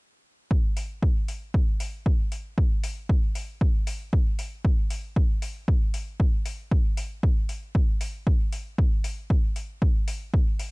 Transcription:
0.51 kick
0.77 open hi-hat
1.03 kick
1.28 open hi-hat
1.54 kick
1.80 open hi-hat
2.06 kick
2.32 open hi-hat
2.58 kick
2.84 open hi-hat
3.09 kick
3.35 open hi-hat
3.61 kick
3.87 open hi-hat
4.13 kick
4.39 open hi-hat
4.65 kick
4.90 open hi-hat
5.16 kick
5.42 open hi-hat
5.68 kick
5.94 open hi-hat
6.20 kick
6.46 open hi-hat
6.71 kick
6.97 open hi-hat
7.23 kick
7.49 open hi-hat
7.75 kick
8.01 open hi-hat
8.27 kick
8.53 open hi-hat
8.78 kick
9.04 open hi-hat
9.30 kick
9.56 open hi-hat
9.82 kick
10.08 open hi-hat
10.34 kick
10.59 open hi-hat

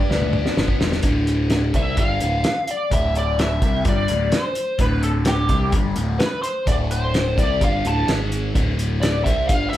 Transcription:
Already playing: G2 G3 D4 D5
0.10 D2 B3, snare
0.22 high tom
0.33 D4, mid tom
0.46 snare
0.56 G1 B3, snare
0.68 kick
0.80 E1 G3, snare
0.92 snare
1.03 D1 D2 A2 D3, kick, closed hi-hat
1.27 closed hi-hat
1.50 snare, closed hi-hat
1.74 C2 C3 G3 C4 E5, kick, closed hi-hat
1.96 G1 G2 D3 G3 F5, kick, closed hi-hat
2.20 D1 D2 A2 D3, closed hi-hat
2.44 snare, closed hi-hat
2.68 D5, closed hi-hat
2.90 D1 D2 A2 D3 E5, kick, closed hi-hat
3.15 D5, closed hi-hat
3.39 E5, snare, closed hi-hat
3.61 C2 C3 G3 C4, kick, closed hi-hat
3.85 G1 G2 D3 G3 D5, kick, closed hi-hat
4.08 D1 D2 A2 D3, closed hi-hat
4.32 C5, snare, closed hi-hat
4.55 closed hi-hat
4.78 D1 D2 A2 D3 B4, kick, closed hi-hat
5.03 A4, closed hi-hat
5.25 G4, snare, closed hi-hat
5.49 C2 C3 G3 C4, kick, closed hi-hat
5.72 G1 G2 D3 G3, kick, closed hi-hat
5.95 D1 D2 A2 D3, closed hi-hat
6.19 B4, snare, closed hi-hat
6.42 C5, closed hi-hat
6.66 D1 D2 A2 D3 D5, kick, closed hi-hat
6.91 C5, closed hi-hat
7.14 snare, closed hi-hat
7.37 C2 C3 G3 C4 D5, kick, closed hi-hat
7.61 G1 G2 D3 G3 F5, kick, closed hi-hat
7.85 D1 D2 A2 D3 A5, closed hi-hat
8.07 G#1 G#2 D#3 G#3, snare, closed hi-hat
8.32 closed hi-hat
8.54 D1 D2 A2 D3, kick, closed hi-hat
8.79 closed hi-hat
9.02 D5, snare, closed hi-hat
9.24 C2 C3 G3 C4 E5, kick, closed hi-hat
9.48 G1 G2 D3 G3 F5, kick, closed hi-hat
9.70 D2 A2 D3 E5, closed hi-hat

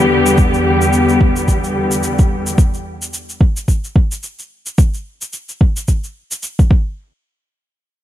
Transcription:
Already playing: E2 D3 G3 B3 G4
0.26 cabasa
0.38 kick, cabasa
0.54 cabasa
0.82 cabasa
0.93 cabasa
1.09 cabasa
1.21 kick
1.36 cabasa
1.48 kick, cabasa
1.64 cabasa
1.91 cabasa
2.03 cabasa
2.19 kick, cabasa
2.47 cabasa
2.58 kick, cabasa
2.74 cabasa
3.02 cabasa
3.13 cabasa
3.29 cabasa
3.41 kick
3.57 cabasa
3.68 kick, cabasa
3.84 cabasa
3.96 kick
4.12 cabasa
4.23 cabasa
4.39 cabasa
4.66 cabasa
4.78 kick, cabasa
4.94 cabasa
5.22 cabasa
5.33 cabasa
5.49 cabasa
5.61 kick
5.77 cabasa
5.88 kick, cabasa
6.04 cabasa
6.31 cabasa
6.43 cabasa
6.59 kick, cabasa
6.71 kick

